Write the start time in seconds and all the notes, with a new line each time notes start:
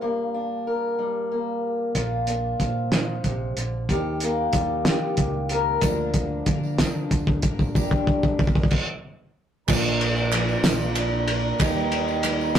Already playing: D4
0.01 G2 A#3
0.34 D4
0.67 A#4
0.99 G3
1.32 A#3
1.95 A#1 A#2 F4, kick, closed hi-hat
2.27 D4, closed hi-hat
2.59 A#2 F3, kick, closed hi-hat
2.92 A#2, snare, closed hi-hat
3.24 A#1 C3, kick, closed hi-hat
3.56 A#1 D3, closed hi-hat
3.89 D#2 D#3 G4, kick, closed hi-hat
4.20 A#3, closed hi-hat
4.53 D#2 G3, kick, closed hi-hat
4.85 G4, snare, closed hi-hat
5.17 C#2 A#2, kick, closed hi-hat
5.49 A#4, closed hi-hat
5.81 D2 D3 F3 A#3 D4 A#4, kick, closed hi-hat, tambourine
5.85 D5
6.14 kick, closed hi-hat
6.46 D3 F3 A#3 D4 A#4, kick, closed hi-hat
6.63 tambourine
6.78 D3 F3 A#3 D4 A#4, kick, snare, closed hi-hat, tambourine
7.11 D2, kick, closed hi-hat, tambourine
7.27 kick
7.42 A1 A#3 D4 A#4, kick, closed hi-hat
7.59 kick, tambourine
7.75 G1 G2 D3 G3 A#3 D4 A#4 D5, kick, tambourine
7.91 kick
8.07 kick
8.23 kick
8.39 G1 G3 A#3 D4 A#4, kick, tambourine
8.47 kick
8.55 kick
8.64 kick
8.71 kick, crash
9.67 A#1 A#2 D3 F3 A#3 D4 F4 A#4 D5 A#5, kick, clap, crash, tambourine
10.01 ride, tambourine
10.17 clap, tambourine
10.32 F3 A#3 D4 A#4, clap, ride
10.49 tambourine
10.64 A#1 A#2 D3 F3 A#3 D4 A#4, snare, ride, tambourine
10.96 clap, ride
11.28 F3 A#3 D4 A#4, ride
11.58 D#2 D#3 G3 A#3 D#4 G4 A#4 D#5, kick, clap, ride, tambourine
11.92 ride, tambourine
12.08 clap, tambourine
12.23 G3 A#3 D#4 A#4, clap, ride
12.41 tambourine
12.55 D#4 A#4, snare, ride